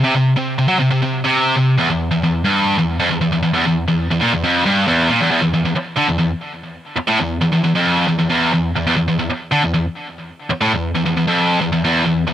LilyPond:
\new Staff \with { instrumentName = "Distorted electric guitar" } { \clef bass \time 4/4 \key e \minor \tempo 4 = 136 c16 c8 c8 c16 fis16 c16 c16 c8 c8. c8 | e,16 e,8 e,16 e,8 g,8. e,8 f,16 e,16 e,16 e,16 e,16 | e,16 e,8 e,8 e,16 ais,16 e,16 f,8 g,8 e,8 ais,16 e,16 | e,16 e,16 e,16 e,16 r8 d16 e,16 e,16 r4. r16 |
a,16 e,8 e,16 e,16 e,16 f,8. e,16 e,16 e,8 e,8 e,16 | e,16 e,16 e,16 e,16 r8 d16 e,16 e,16 r4. r16 | a,16 e,8 e,16 e,16 e,16 f,8. e,16 e,16 e,8 e,8 e,16 | }